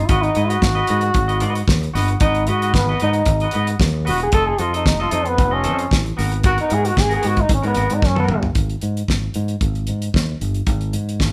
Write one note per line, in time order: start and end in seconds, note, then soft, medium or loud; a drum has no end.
0.00 0.10 D#4 medium
0.09 0.29 G#1 loud
0.09 0.30 F#4 medium
0.09 0.24 F#4 loud
0.09 0.30 B4 medium
0.09 0.31 D#5 medium
0.09 kick loud
0.09 closed hi-hat medium
0.22 0.51 D#4 medium
0.22 closed hi-hat soft
0.35 0.56 G#2 loud
0.35 0.50 F#4 medium
0.35 0.49 B4 medium
0.35 0.48 D#5 medium
0.35 closed hi-hat medium
0.49 1.82 F#4 loud
0.49 0.60 F#4 soft
0.49 0.61 B4 medium
0.49 0.61 D#5 medium
0.49 closed hi-hat medium
0.61 0.82 G#1 loud
0.61 muted clean electric guitar stroke soft
0.61 kick medium
0.61 snare loud
0.75 0.87 F#4 medium
0.75 0.87 B4 medium
0.75 0.88 D#5 medium
0.87 1.09 G#2 medium
0.87 1.05 F#4 medium
0.87 1.02 B4 medium
0.87 1.00 D#5 medium
0.87 closed hi-hat medium
1.01 muted clean electric guitar stroke soft
1.01 closed hi-hat soft
1.14 1.43 G#1 loud
1.14 muted clean electric guitar stroke soft
1.14 kick loud
1.14 closed hi-hat medium
1.28 1.39 F#4 medium
1.28 1.40 B4 medium
1.28 1.41 D#5 medium
1.28 closed hi-hat soft
1.40 1.61 G#2 medium
1.40 1.62 F#4 medium
1.40 1.55 B4 medium
1.40 1.54 D#5 medium
1.40 closed hi-hat medium
1.55 muted clean electric guitar stroke soft
1.55 closed hi-hat medium
1.68 1.88 D#2 medium
1.68 kick loud
1.68 snare loud
1.82 muted clean electric guitar stroke medium
1.82 closed hi-hat soft
1.94 2.14 G1 loud
1.94 2.15 F#4 medium
1.94 2.09 B4 medium
1.94 2.08 D#5 medium
1.94 snare soft
1.94 open hi-hat medium
2.08 muted clean electric guitar stroke medium
2.08 closed hi-hat soft
2.20 2.50 G#1 loud
2.20 2.50 D#4 loud
2.20 2.42 F#4 medium
2.20 2.42 B4 medium
2.20 2.43 D#5 loud
2.20 kick loud
2.20 closed hi-hat medium
2.35 closed hi-hat soft
2.47 2.76 G#2 medium
2.47 2.63 F#4 medium
2.47 2.75 F#4 loud
2.47 2.62 B4 medium
2.47 2.61 D#5 medium
2.47 closed hi-hat medium
2.62 2.72 F#4 medium
2.62 2.74 B4 medium
2.62 2.74 D#5 medium
2.62 closed hi-hat medium
2.73 2.94 G#1 medium
2.73 2.99 B3 medium
2.73 muted clean electric guitar stroke soft
2.73 kick loud
2.73 snare loud
2.89 2.99 F#4 medium
2.89 3.00 B4 medium
2.89 3.01 D#5 medium
3.00 3.21 G#2 loud
3.00 3.17 F#4 medium
3.00 3.14 B4 medium
3.00 3.13 D#5 medium
3.00 closed hi-hat medium
3.04 3.51 D#4 loud
3.13 muted clean electric guitar stroke soft
3.13 closed hi-hat soft
3.26 3.46 G#1 loud
3.26 muted clean electric guitar stroke soft
3.26 kick loud
3.26 closed hi-hat medium
3.40 3.52 F#4 medium
3.40 3.53 B4 medium
3.40 3.54 D#5 medium
3.40 closed hi-hat soft
3.51 3.74 G#2 medium
3.51 3.74 F#4 medium
3.51 3.68 B4 medium
3.51 3.67 D#5 medium
3.51 closed hi-hat medium
3.67 muted clean electric guitar stroke medium
3.67 closed hi-hat medium
3.80 4.10 D#2 medium
3.80 kick loud
3.80 snare loud
3.94 muted clean electric guitar stroke soft
4.05 4.27 E1 loud
4.05 4.26 F#4 medium
4.05 4.20 F#4 medium
4.05 4.19 B4 medium
4.05 4.19 D#5 medium
4.05 open hi-hat medium
4.20 4.33 G#4 medium
4.20 muted clean electric guitar stroke soft
4.20 closed hi-hat soft
4.32 4.52 F1 loud
4.32 4.53 F4 medium
4.32 4.54 A4 medium
4.32 4.49 A4 loud
4.32 4.54 D#5 medium
4.32 kick loud
4.32 closed hi-hat medium
4.48 4.63 G#4 loud
4.58 4.87 F2 medium
4.58 4.73 F4 medium
4.58 4.74 F4 medium
4.58 4.73 A4 medium
4.58 4.72 D#5 medium
4.58 closed hi-hat medium
4.73 4.86 D#4 medium
4.73 4.84 F4 medium
4.73 4.85 A4 medium
4.73 4.85 D#5 medium
4.73 closed hi-hat medium
4.85 5.05 F1 medium
4.85 5.00 D#4 medium
4.85 muted clean electric guitar stroke soft
4.85 kick loud
4.85 snare loud
5.00 5.10 F4 medium
5.00 5.15 F4 medium
5.00 5.11 A4 medium
5.00 5.12 D#5 medium
5.11 5.40 F2 medium
5.11 5.29 D#4 loud
5.11 5.28 F4 medium
5.11 5.25 A4 medium
5.11 5.24 D#5 medium
5.11 closed hi-hat medium
5.25 5.55 B3 medium
5.25 muted clean electric guitar stroke soft
5.25 closed hi-hat soft
5.37 5.67 F1 loud
5.37 muted clean electric guitar stroke soft
5.37 kick loud
5.37 closed hi-hat medium
5.51 6.06 C#4 medium
5.51 5.62 F4 medium
5.51 5.63 A4 medium
5.51 5.63 D#5 medium
5.63 5.85 F2 medium
5.63 5.85 F4 medium
5.63 5.78 A4 medium
5.63 5.76 D#5 loud
5.63 closed hi-hat medium
5.78 muted clean electric guitar stroke medium
5.78 closed hi-hat medium
5.91 6.11 A1 medium
5.91 kick loud
5.91 snare loud
6.04 muted clean electric guitar stroke soft
6.04 closed hi-hat soft
6.17 6.57 G#1 medium
6.17 6.38 B3 medium
6.17 6.32 F#4 medium
6.17 6.31 A#4 medium
6.17 snare soft
6.17 open hi-hat medium
6.32 muted clean electric guitar stroke soft
6.32 closed hi-hat soft
6.43 6.65 B3 loud
6.43 6.66 F#4 loud
6.43 6.58 F#4 loud
6.43 6.66 A#4 loud
6.43 kick loud
6.43 closed hi-hat medium
6.58 6.75 D#4 loud
6.58 closed hi-hat soft
6.69 6.91 G#2 loud
6.69 6.84 B3 medium
6.69 6.83 F#4 medium
6.69 6.82 A#4 medium
6.69 closed hi-hat medium
6.74 6.89 G#4 loud
6.83 6.94 B3 soft
6.83 6.94 F#4 medium
6.83 6.95 A#4 medium
6.83 closed hi-hat medium
6.87 7.03 F#4 medium
6.95 7.17 G#1 loud
6.95 muted clean electric guitar stroke soft
6.95 kick loud
6.95 snare loud
7.01 7.13 G#4 loud
7.09 7.20 B3 medium
7.09 7.21 F#4 medium
7.09 7.22 A#4 medium
7.09 closed hi-hat soft
7.16 7.29 G#4 medium
7.21 7.43 G#2 medium
7.21 7.39 B3 medium
7.21 7.36 F#4 medium
7.21 7.35 A#4 medium
7.21 closed hi-hat medium
7.27 7.43 F#4 medium
7.36 muted clean electric guitar stroke soft
7.36 kick medium
7.36 closed hi-hat soft
7.41 7.51 D#4 medium
7.48 7.60 G#1 loud
7.48 muted clean electric guitar stroke soft
7.48 kick loud
7.48 closed hi-hat medium
7.54 7.65 C#4 medium
7.63 7.73 G#2 loud
7.63 7.74 B3 medium
7.63 7.75 F#4 medium
7.63 7.76 A#4 medium
7.63 closed hi-hat soft
7.68 7.97 B3 medium
7.75 7.86 G#1 medium
7.75 7.97 B3 medium
7.75 7.90 F#4 medium
7.75 7.89 A#4 medium
7.75 closed hi-hat medium
7.90 7.99 G#2 medium
7.90 muted clean electric guitar stroke soft
7.90 closed hi-hat medium
7.96 8.09 D#4 medium
8.02 8.31 F#2 medium
8.02 muted clean electric guitar stroke soft
8.02 kick loud
8.02 snare medium
8.07 8.19 C#4 loud
8.15 8.28 B3 medium
8.15 8.28 F#4 medium
8.15 8.29 A#4 medium
8.15 high tom medium
8.20 8.43 B3 medium
8.29 8.49 G1 loud
8.29 muted clean electric guitar stroke soft
8.29 mid tom medium
8.42 muted clean electric guitar stroke soft
8.42 floor tom medium
8.55 8.75 G#1 medium
8.55 kick loud
8.55 closed hi-hat medium
8.69 closed hi-hat soft
8.81 9.02 G#2 medium
8.81 closed hi-hat medium
8.97 closed hi-hat soft
9.08 9.28 G#1 medium
9.08 kick medium
9.08 snare medium
9.34 9.55 G#2 medium
9.34 closed hi-hat medium
9.48 closed hi-hat soft
9.61 9.90 G#1 loud
9.61 kick loud
9.61 closed hi-hat medium
9.75 closed hi-hat soft
9.87 10.08 G#2 medium
9.87 closed hi-hat medium
10.02 closed hi-hat medium
10.14 10.34 D#2 medium
10.14 kick medium
10.14 snare loud
10.41 10.61 G1 medium
10.41 closed hi-hat medium
10.54 closed hi-hat soft
10.67 10.95 G#1 loud
10.67 kick loud
10.67 closed hi-hat medium
10.81 closed hi-hat soft
10.93 11.21 G#2 medium
10.93 closed hi-hat medium
11.09 closed hi-hat soft
11.20 11.32 G#1 medium
11.20 kick medium
11.20 snare medium